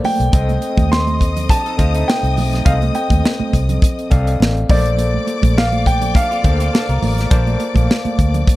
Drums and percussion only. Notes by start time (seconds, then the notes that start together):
0.04 open hi-hat, high conga, low conga
0.20 closed hi-hat
0.32 kick, closed hi-hat, muted conga
0.49 closed hi-hat, high conga
0.62 closed hi-hat
0.77 kick, closed hi-hat, high conga
0.93 snare
1.07 closed hi-hat, high conga
1.21 kick, closed hi-hat, muted conga
1.36 closed hi-hat, low conga
1.49 kick, closed hi-hat
1.66 closed hi-hat
1.79 kick, closed hi-hat
1.95 closed hi-hat
2.10 snare
2.24 closed hi-hat
2.37 open hi-hat, high conga, low conga
2.53 snare, closed hi-hat
2.66 kick, closed hi-hat
2.82 closed hi-hat, high conga
2.95 closed hi-hat, muted conga
3.10 kick, closed hi-hat, high conga
3.24 snare, muted conga
3.39 high conga
3.53 kick, closed hi-hat, muted conga
3.69 closed hi-hat, low conga
3.82 kick, closed hi-hat, muted conga
3.99 closed hi-hat
4.11 kick, closed hi-hat, muted conga
4.27 closed hi-hat
4.40 snare, muted conga
4.57 closed hi-hat
4.70 kick, open hi-hat, high conga, low conga
4.86 closed hi-hat
4.98 closed hi-hat, muted conga
5.14 high conga
5.27 closed hi-hat, muted conga
5.42 kick, closed hi-hat, high conga
5.57 snare, muted conga
5.72 closed hi-hat, high conga
5.86 kick, closed hi-hat
6.01 closed hi-hat, low conga
6.14 kick, closed hi-hat, muted conga
6.32 closed hi-hat
6.43 kick, closed hi-hat, muted conga
6.60 closed hi-hat
6.75 snare
6.89 closed hi-hat
7.02 open hi-hat, muted conga, high conga, low conga
7.18 snare, closed hi-hat
7.31 kick, closed hi-hat, muted conga
7.47 closed hi-hat, high conga
7.60 closed hi-hat, muted conga
7.74 kick, closed hi-hat, high conga
7.91 snare
8.05 closed hi-hat, high conga
8.19 kick, closed hi-hat
8.34 closed hi-hat, low conga
8.47 kick, closed hi-hat, muted conga